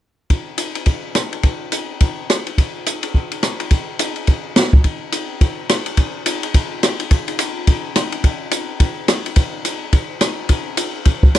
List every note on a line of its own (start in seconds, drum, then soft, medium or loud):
0.30 kick soft
0.30 ride soft
0.58 hi-hat pedal soft
0.58 ride medium
0.75 ride soft
0.86 kick soft
0.86 ride soft
1.15 cross-stick soft
1.15 hi-hat pedal soft
1.15 ride medium
1.33 ride soft
1.43 kick soft
1.43 ride soft
1.72 hi-hat pedal soft
1.72 ride medium
2.01 kick soft
2.01 ride medium
2.30 cross-stick medium
2.30 hi-hat pedal medium
2.30 ride soft
2.47 ride soft
2.58 kick soft
2.58 ride soft
2.86 hi-hat pedal soft
2.86 ride medium
3.03 ride soft
3.14 kick soft
3.32 ride soft
3.43 cross-stick soft
3.43 hi-hat pedal soft
3.43 ride medium
3.60 ride soft
3.71 kick soft
3.71 ride soft
3.99 hi-hat pedal soft
3.99 ride medium
4.16 ride soft
4.27 kick soft
4.27 ride soft
4.56 cross-stick soft
4.56 snare soft
4.56 hi-hat pedal medium
4.56 ride soft
4.73 kick soft
4.84 kick soft
4.84 ride soft
5.12 hi-hat pedal soft
5.12 ride medium
5.41 kick soft
5.41 ride soft
5.69 cross-stick medium
5.69 hi-hat pedal soft
5.69 ride medium
5.86 ride soft
5.97 kick soft
5.97 ride medium
6.26 hi-hat pedal soft
6.26 ride medium
6.43 ride soft
6.54 kick soft
6.54 ride medium
6.83 cross-stick medium
6.83 hi-hat pedal soft
6.83 ride medium
7.00 ride soft
7.11 kick soft
7.11 ride medium
7.28 ride soft
7.39 hi-hat pedal medium
7.39 ride medium
7.67 kick soft
7.67 ride medium
7.96 cross-stick medium
7.96 hi-hat pedal soft
7.96 ride medium
8.12 ride soft
8.24 kick soft
8.24 ride soft
8.51 hi-hat pedal medium
8.51 ride medium
8.80 kick soft
8.80 ride medium
9.08 cross-stick medium
9.08 hi-hat pedal medium
9.08 ride medium
9.26 ride soft
9.36 kick soft
9.36 ride medium
9.65 hi-hat pedal soft
9.65 ride medium
9.93 kick soft
9.93 ride soft
10.21 cross-stick medium
10.21 hi-hat pedal medium
10.21 ride medium
10.49 kick soft
10.49 ride medium
10.77 hi-hat pedal medium
10.77 ride medium
11.05 kick soft
11.05 ride medium
11.23 kick soft
11.35 cross-stick medium
11.35 hi-hat pedal soft
11.35 ride medium